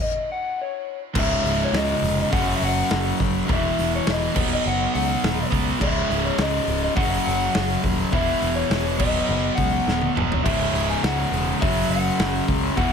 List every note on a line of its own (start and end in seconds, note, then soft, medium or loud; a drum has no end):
0.02 0.30 D#5 medium
0.32 0.60 F#5 loud
0.61 1.00 C#5 medium
1.14 1.36 C#1 loud
1.14 2.29 C#2 medium
1.14 2.30 G#2 medium
1.14 2.31 C#3 medium
1.14 kick loud
1.14 crash loud
1.19 1.62 E5 medium
1.44 1.64 C#1 medium
1.44 snare soft
1.44 open hi-hat medium
1.64 1.75 C#5 medium
1.72 1.93 C#2 medium
1.72 snare loud
1.72 open hi-hat medium
1.76 2.19 D#5 medium
2.02 2.23 F1 medium
2.02 open hi-hat medium
2.20 2.32 D#5 medium
2.31 2.53 F#1 medium
2.31 3.46 F#2 loud
2.31 3.47 C#3 loud
2.31 3.48 F#3 medium
2.31 2.55 F#5 loud
2.31 kick loud
2.31 open hi-hat loud
2.56 2.62 E5 medium
2.61 2.81 F#1 medium
2.61 3.17 F#5 loud
2.61 open hi-hat medium
2.91 3.11 F#1 medium
2.91 snare loud
2.91 open hi-hat loud
3.20 3.40 F#1 loud
3.20 kick medium
3.20 open hi-hat medium
3.47 3.69 E1 loud
3.47 4.33 E2 medium
3.47 4.33 B2 loud
3.47 4.34 E3 loud
3.47 kick loud
3.47 open hi-hat medium
3.53 3.91 E5 loud
3.79 3.98 E1 medium
3.79 snare soft
3.79 open hi-hat medium
3.95 4.10 C#5 medium
4.07 4.27 E1 medium
4.07 4.52 D#5 medium
4.07 snare loud
4.07 open hi-hat medium
4.34 4.56 D#1 medium
4.34 5.49 B2 loud
4.34 5.50 F#3 loud
4.34 5.49 B3 loud
4.34 kick loud
4.34 crash loud
4.53 4.66 D#5 loud
4.66 4.85 F#1 loud
4.66 4.93 F#5 loud
4.94 5.15 C#2 medium
4.94 5.48 F#5 loud
4.94 open hi-hat medium
5.23 5.43 D#1 medium
5.23 snare loud
5.23 open hi-hat medium
5.51 5.72 C#2 medium
5.51 5.79 B2 medium
5.51 5.79 F#3 medium
5.51 5.78 B3 medium
5.51 kick medium
5.51 open hi-hat medium
5.80 6.01 C#1 loud
5.80 6.95 C#2 medium
5.80 6.96 G#2 loud
5.80 6.95 C#3 loud
5.80 6.26 E5 loud
5.80 kick loud
5.80 crash loud
6.10 6.30 C#1 medium
6.10 snare soft
6.10 open hi-hat medium
6.25 6.40 C#5 medium
6.38 6.58 C#2 medium
6.38 6.82 D#5 medium
6.38 snare loud
6.38 open hi-hat medium
6.67 6.88 C#1 medium
6.67 open hi-hat medium
6.83 6.95 D#5 medium
6.95 7.17 F#1 loud
6.95 8.11 F#2 loud
6.95 8.11 C#3 loud
6.95 8.12 F#3 loud
6.95 7.24 F#5 loud
6.95 kick loud
6.95 open hi-hat loud
7.25 7.47 F#1 medium
7.25 7.80 F#5 loud
7.25 open hi-hat medium
7.55 7.75 F#1 loud
7.55 snare loud
7.55 open hi-hat loud
7.84 8.04 D#1 loud
7.84 kick medium
7.84 open hi-hat medium
8.11 8.33 E1 loud
8.11 8.98 E2 medium
8.11 8.97 B2 medium
8.11 8.99 E3 medium
8.11 8.58 E5 medium
8.11 kick loud
8.11 open hi-hat medium
8.42 8.62 E1 loud
8.42 open hi-hat medium
8.55 9.01 C#5 medium
8.70 9.00 E1 medium
8.70 snare loud
8.70 open hi-hat medium
8.97 9.20 D#1 medium
8.97 10.14 B2 loud
8.97 10.15 F#3 loud
8.97 10.14 B3 loud
8.97 9.53 D#5 medium
8.97 kick loud
8.97 crash loud
9.29 9.49 F#1 loud
9.55 9.79 C#2 medium
9.55 10.11 F#5 loud
9.55 kick medium
9.55 open hi-hat medium
9.87 10.07 D#1 medium
9.87 snare medium
10.01 high tom medium
10.15 10.37 D#1 loud
10.15 10.43 B2 medium
10.15 10.44 F#3 medium
10.15 10.43 B3 medium
10.15 mid tom loud
10.32 floor tom medium
10.44 10.66 C#1 loud
10.44 11.59 C#2 medium
10.44 11.60 G#2 medium
10.44 11.60 C#3 medium
10.44 10.89 E5 loud
10.44 kick loud
10.44 open hi-hat medium
10.44 crash loud
10.73 10.94 C#1 medium
10.73 open hi-hat medium
10.89 11.03 G#5 loud
11.03 11.23 C#2 medium
11.03 11.58 F#5 loud
11.03 snare loud
11.03 open hi-hat medium
11.32 11.52 E1 medium
11.32 open hi-hat medium
11.61 11.82 F#1 medium
11.61 12.76 F#2 medium
11.61 12.76 C#3 loud
11.61 12.77 F#3 loud
11.61 11.89 E5 medium
11.61 kick loud
11.61 open hi-hat loud
11.88 12.09 F#1 medium
11.88 12.45 F#5 loud
11.88 open hi-hat medium
12.19 12.40 F#1 medium
12.19 snare loud
12.19 open hi-hat medium
12.48 12.69 C#2 loud
12.48 kick medium
12.48 open hi-hat medium
12.76 12.93 E1 loud
12.76 12.93 E2 medium
12.76 12.93 B2 loud
12.76 12.93 E3 loud
12.76 12.93 F#5 loud
12.76 kick loud
12.76 open hi-hat medium